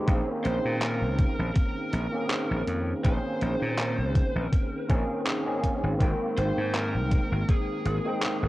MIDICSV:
0, 0, Header, 1, 5, 480
1, 0, Start_track
1, 0, Tempo, 740741
1, 52, Time_signature, 4, 2, 24, 8
1, 5497, End_track
2, 0, Start_track
2, 0, Title_t, "Lead electric guitar"
2, 0, Program_c, 0, 29
2, 285, Note_on_c, 0, 72, 104
2, 521, Note_off_c, 0, 72, 0
2, 524, Note_on_c, 0, 70, 93
2, 982, Note_off_c, 0, 70, 0
2, 1002, Note_on_c, 0, 70, 81
2, 1701, Note_off_c, 0, 70, 0
2, 1970, Note_on_c, 0, 72, 107
2, 2884, Note_off_c, 0, 72, 0
2, 2884, Note_on_c, 0, 70, 107
2, 3385, Note_off_c, 0, 70, 0
2, 4133, Note_on_c, 0, 72, 99
2, 4370, Note_off_c, 0, 72, 0
2, 4372, Note_on_c, 0, 70, 90
2, 4855, Note_on_c, 0, 68, 76
2, 4866, Note_off_c, 0, 70, 0
2, 5497, Note_off_c, 0, 68, 0
2, 5497, End_track
3, 0, Start_track
3, 0, Title_t, "Tine electric piano"
3, 0, Program_c, 1, 4
3, 0, Control_c, 1, 64, 127
3, 0, Note_on_c, 1, 51, 88
3, 0, Note_on_c, 1, 67, 96
3, 39, Note_off_c, 1, 51, 0
3, 39, Note_on_c, 1, 51, 84
3, 43, Note_on_c, 1, 58, 76
3, 49, Note_on_c, 1, 60, 80
3, 53, Note_on_c, 1, 61, 76
3, 59, Note_on_c, 1, 68, 94
3, 61, Control_c, 1, 64, 0
3, 66, Note_off_c, 1, 67, 0
3, 161, Control_c, 1, 64, 127
3, 1345, Note_off_c, 1, 51, 0
3, 1347, Note_off_c, 1, 58, 0
3, 1351, Note_off_c, 1, 60, 0
3, 1352, Note_off_c, 1, 61, 0
3, 1355, Note_off_c, 1, 68, 0
3, 1370, Note_on_c, 1, 51, 74
3, 1377, Note_on_c, 1, 58, 67
3, 1381, Note_on_c, 1, 60, 67
3, 1386, Note_on_c, 1, 61, 67
3, 1391, Note_on_c, 1, 68, 80
3, 1939, Note_off_c, 1, 51, 0
3, 1943, Note_off_c, 1, 58, 0
3, 1944, Note_off_c, 1, 60, 0
3, 1947, Note_off_c, 1, 61, 0
3, 1949, Note_off_c, 1, 68, 0
3, 1962, Note_on_c, 1, 51, 76
3, 1966, Note_on_c, 1, 58, 69
3, 1972, Note_on_c, 1, 60, 70
3, 1976, Note_on_c, 1, 61, 68
3, 1982, Note_on_c, 1, 68, 82
3, 3141, Note_off_c, 1, 51, 0
3, 3143, Note_off_c, 1, 58, 0
3, 3146, Note_off_c, 1, 60, 0
3, 3148, Note_off_c, 1, 61, 0
3, 3151, Note_off_c, 1, 68, 0
3, 3165, Note_on_c, 1, 51, 88
3, 3168, Note_on_c, 1, 58, 78
3, 3170, Note_on_c, 1, 60, 80
3, 3174, Note_on_c, 1, 61, 79
3, 3176, Note_on_c, 1, 68, 96
3, 3509, Note_off_c, 1, 51, 0
3, 3510, Note_off_c, 1, 58, 0
3, 3511, Note_off_c, 1, 60, 0
3, 3513, Note_off_c, 1, 61, 0
3, 3514, Note_off_c, 1, 68, 0
3, 3537, Note_on_c, 1, 51, 82
3, 3540, Note_on_c, 1, 58, 75
3, 3543, Note_on_c, 1, 60, 70
3, 3545, Note_on_c, 1, 61, 73
3, 3546, Note_on_c, 1, 68, 87
3, 3863, Note_off_c, 1, 51, 0
3, 3864, Note_off_c, 1, 58, 0
3, 3865, Note_off_c, 1, 60, 0
3, 3866, Note_off_c, 1, 61, 0
3, 3867, Note_off_c, 1, 68, 0
3, 3882, Note_on_c, 1, 51, 87
3, 3886, Note_on_c, 1, 56, 76
3, 3891, Note_on_c, 1, 58, 79
3, 3896, Note_on_c, 1, 60, 78
3, 3899, Control_c, 1, 64, 0
3, 3901, Note_on_c, 1, 79, 91
3, 4012, Control_c, 1, 64, 127
3, 5187, Note_off_c, 1, 51, 0
3, 5189, Note_off_c, 1, 56, 0
3, 5192, Note_off_c, 1, 58, 0
3, 5194, Note_off_c, 1, 60, 0
3, 5196, Note_off_c, 1, 79, 0
3, 5215, Note_on_c, 1, 51, 74
3, 5219, Note_on_c, 1, 56, 68
3, 5225, Note_on_c, 1, 58, 67
3, 5229, Note_on_c, 1, 60, 68
3, 5235, Note_on_c, 1, 79, 81
3, 5497, Note_off_c, 1, 51, 0
3, 5497, Note_off_c, 1, 56, 0
3, 5497, Note_off_c, 1, 58, 0
3, 5497, Note_off_c, 1, 60, 0
3, 5497, Note_off_c, 1, 79, 0
3, 5497, End_track
4, 0, Start_track
4, 0, Title_t, "Slap bass"
4, 0, Program_c, 2, 36
4, 50, Note_on_c, 2, 34, 94
4, 135, Note_off_c, 2, 34, 0
4, 293, Note_on_c, 2, 34, 91
4, 377, Note_off_c, 2, 34, 0
4, 422, Note_on_c, 2, 46, 90
4, 661, Note_on_c, 2, 37, 83
4, 670, Note_off_c, 2, 46, 0
4, 807, Note_off_c, 2, 37, 0
4, 902, Note_on_c, 2, 34, 87
4, 972, Note_off_c, 2, 34, 0
4, 1251, Note_on_c, 2, 34, 88
4, 1335, Note_off_c, 2, 34, 0
4, 1624, Note_on_c, 2, 34, 81
4, 1693, Note_off_c, 2, 34, 0
4, 1730, Note_on_c, 2, 41, 83
4, 1893, Note_off_c, 2, 41, 0
4, 1973, Note_on_c, 2, 34, 91
4, 2056, Note_off_c, 2, 34, 0
4, 2213, Note_on_c, 2, 34, 90
4, 2297, Note_off_c, 2, 34, 0
4, 2344, Note_on_c, 2, 46, 91
4, 2582, Note_on_c, 2, 37, 84
4, 2592, Note_off_c, 2, 46, 0
4, 2728, Note_off_c, 2, 37, 0
4, 2822, Note_on_c, 2, 34, 85
4, 2892, Note_off_c, 2, 34, 0
4, 3173, Note_on_c, 2, 34, 89
4, 3257, Note_off_c, 2, 34, 0
4, 3782, Note_on_c, 2, 32, 83
4, 3852, Note_off_c, 2, 32, 0
4, 3891, Note_on_c, 2, 32, 93
4, 3976, Note_off_c, 2, 32, 0
4, 4132, Note_on_c, 2, 32, 88
4, 4216, Note_off_c, 2, 32, 0
4, 4261, Note_on_c, 2, 44, 89
4, 4503, Note_on_c, 2, 36, 84
4, 4513, Note_off_c, 2, 44, 0
4, 4648, Note_off_c, 2, 36, 0
4, 4742, Note_on_c, 2, 32, 84
4, 4812, Note_off_c, 2, 32, 0
4, 5088, Note_on_c, 2, 32, 90
4, 5174, Note_off_c, 2, 32, 0
4, 5462, Note_on_c, 2, 32, 81
4, 5497, Note_off_c, 2, 32, 0
4, 5497, End_track
5, 0, Start_track
5, 0, Title_t, "Drums"
5, 50, Note_on_c, 9, 42, 74
5, 51, Note_on_c, 9, 36, 116
5, 115, Note_off_c, 9, 42, 0
5, 116, Note_off_c, 9, 36, 0
5, 292, Note_on_c, 9, 42, 63
5, 357, Note_off_c, 9, 42, 0
5, 531, Note_on_c, 9, 39, 112
5, 531, Note_on_c, 9, 42, 73
5, 596, Note_off_c, 9, 39, 0
5, 596, Note_off_c, 9, 42, 0
5, 770, Note_on_c, 9, 42, 63
5, 771, Note_on_c, 9, 36, 106
5, 835, Note_off_c, 9, 42, 0
5, 836, Note_off_c, 9, 36, 0
5, 1008, Note_on_c, 9, 42, 78
5, 1011, Note_on_c, 9, 36, 117
5, 1073, Note_off_c, 9, 42, 0
5, 1076, Note_off_c, 9, 36, 0
5, 1250, Note_on_c, 9, 42, 63
5, 1315, Note_off_c, 9, 42, 0
5, 1491, Note_on_c, 9, 39, 116
5, 1491, Note_on_c, 9, 42, 76
5, 1555, Note_off_c, 9, 39, 0
5, 1555, Note_off_c, 9, 42, 0
5, 1731, Note_on_c, 9, 42, 64
5, 1795, Note_off_c, 9, 42, 0
5, 1971, Note_on_c, 9, 42, 72
5, 1972, Note_on_c, 9, 36, 114
5, 2035, Note_off_c, 9, 42, 0
5, 2037, Note_off_c, 9, 36, 0
5, 2211, Note_on_c, 9, 42, 62
5, 2275, Note_off_c, 9, 42, 0
5, 2452, Note_on_c, 9, 39, 109
5, 2452, Note_on_c, 9, 42, 68
5, 2517, Note_off_c, 9, 39, 0
5, 2517, Note_off_c, 9, 42, 0
5, 2692, Note_on_c, 9, 36, 106
5, 2692, Note_on_c, 9, 42, 60
5, 2757, Note_off_c, 9, 36, 0
5, 2757, Note_off_c, 9, 42, 0
5, 2933, Note_on_c, 9, 36, 116
5, 2933, Note_on_c, 9, 42, 76
5, 2997, Note_off_c, 9, 36, 0
5, 2998, Note_off_c, 9, 42, 0
5, 3172, Note_on_c, 9, 36, 105
5, 3172, Note_on_c, 9, 42, 61
5, 3237, Note_off_c, 9, 36, 0
5, 3237, Note_off_c, 9, 42, 0
5, 3412, Note_on_c, 9, 39, 115
5, 3412, Note_on_c, 9, 42, 73
5, 3477, Note_off_c, 9, 39, 0
5, 3477, Note_off_c, 9, 42, 0
5, 3652, Note_on_c, 9, 36, 61
5, 3653, Note_on_c, 9, 42, 62
5, 3717, Note_off_c, 9, 36, 0
5, 3717, Note_off_c, 9, 42, 0
5, 3892, Note_on_c, 9, 36, 106
5, 3892, Note_on_c, 9, 42, 70
5, 3957, Note_off_c, 9, 36, 0
5, 3957, Note_off_c, 9, 42, 0
5, 4132, Note_on_c, 9, 42, 59
5, 4196, Note_off_c, 9, 42, 0
5, 4371, Note_on_c, 9, 39, 105
5, 4371, Note_on_c, 9, 42, 66
5, 4436, Note_off_c, 9, 39, 0
5, 4436, Note_off_c, 9, 42, 0
5, 4610, Note_on_c, 9, 42, 57
5, 4612, Note_on_c, 9, 36, 100
5, 4675, Note_off_c, 9, 42, 0
5, 4677, Note_off_c, 9, 36, 0
5, 4851, Note_on_c, 9, 42, 72
5, 4852, Note_on_c, 9, 36, 113
5, 4916, Note_off_c, 9, 36, 0
5, 4916, Note_off_c, 9, 42, 0
5, 5090, Note_on_c, 9, 42, 62
5, 5155, Note_off_c, 9, 42, 0
5, 5330, Note_on_c, 9, 39, 114
5, 5330, Note_on_c, 9, 42, 75
5, 5395, Note_off_c, 9, 39, 0
5, 5395, Note_off_c, 9, 42, 0
5, 5497, End_track
0, 0, End_of_file